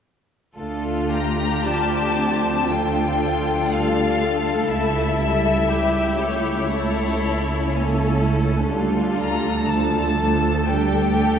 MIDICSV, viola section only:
0, 0, Header, 1, 2, 480
1, 0, Start_track
1, 0, Key_signature, -1, "minor"
1, 0, Tempo, 1075269
1, 259, Time_signature, 4, 2, 24, 8
1, 738, Tempo, 1034483
1, 1698, Tempo, 1000000
1, 3618, Tempo, 980392
1, 5414, End_track
2, 0, Start_track
2, 0, Title_t, "Viola section"
2, 0, Program_c, 0, 48
2, 263, Note_on_c, 0, 62, 33
2, 264, Note_on_c, 0, 57, 35
2, 722, Note_off_c, 0, 62, 0
2, 723, Note_off_c, 0, 57, 0
2, 736, Note_on_c, 0, 53, 33
2, 738, Note_on_c, 0, 65, 34
2, 983, Note_off_c, 0, 65, 0
2, 986, Note_on_c, 0, 60, 35
2, 1221, Note_off_c, 0, 60, 0
2, 1223, Note_on_c, 0, 62, 35
2, 1462, Note_off_c, 0, 62, 0
2, 1467, Note_on_c, 0, 62, 37
2, 1697, Note_off_c, 0, 53, 0
2, 1702, Note_on_c, 0, 55, 35
2, 1936, Note_off_c, 0, 55, 0
2, 1938, Note_on_c, 0, 57, 38
2, 2163, Note_off_c, 0, 62, 0
2, 2170, Note_off_c, 0, 57, 0
2, 2174, Note_on_c, 0, 64, 36
2, 2176, Note_on_c, 0, 57, 36
2, 2408, Note_off_c, 0, 57, 0
2, 2411, Note_on_c, 0, 55, 40
2, 2643, Note_off_c, 0, 64, 0
2, 2648, Note_off_c, 0, 55, 0
2, 2652, Note_on_c, 0, 64, 33
2, 2654, Note_on_c, 0, 55, 39
2, 2890, Note_off_c, 0, 55, 0
2, 2891, Note_on_c, 0, 57, 39
2, 3599, Note_off_c, 0, 64, 0
2, 3616, Note_on_c, 0, 64, 38
2, 3617, Note_off_c, 0, 57, 0
2, 3618, Note_on_c, 0, 58, 41
2, 3856, Note_on_c, 0, 57, 40
2, 3860, Note_off_c, 0, 58, 0
2, 4090, Note_off_c, 0, 64, 0
2, 4095, Note_on_c, 0, 55, 39
2, 4096, Note_on_c, 0, 62, 41
2, 4099, Note_off_c, 0, 57, 0
2, 4570, Note_off_c, 0, 55, 0
2, 4586, Note_on_c, 0, 53, 38
2, 4819, Note_off_c, 0, 53, 0
2, 4825, Note_on_c, 0, 53, 42
2, 5043, Note_off_c, 0, 62, 0
2, 5061, Note_off_c, 0, 53, 0
2, 5066, Note_on_c, 0, 62, 39
2, 5068, Note_on_c, 0, 55, 41
2, 5303, Note_off_c, 0, 55, 0
2, 5306, Note_on_c, 0, 57, 42
2, 5414, Note_off_c, 0, 57, 0
2, 5414, Note_off_c, 0, 62, 0
2, 5414, End_track
0, 0, End_of_file